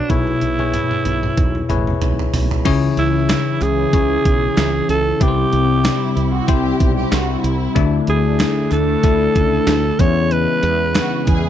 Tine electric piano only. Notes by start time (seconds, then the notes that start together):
Already playing: D4 F#4 B4 C#5
0.09 B2 E4 G#4 B4 C#5
0.59 E4 G#4 B4 C#5
1.69 E4 G#4 B4 C#5
2.65 C#3 C#4 E4 G#4 C#5
3.93 C#4 E4 G#4 C#5
5.20 C3 C4 E4 G4 B4
5.28 C5
6.48 C4 E4 G4 C5
7.75 D3 A3 D4 E4
9.03 A3 D4 E4 A4
9.99 E3 B3 C#4 E4 G#4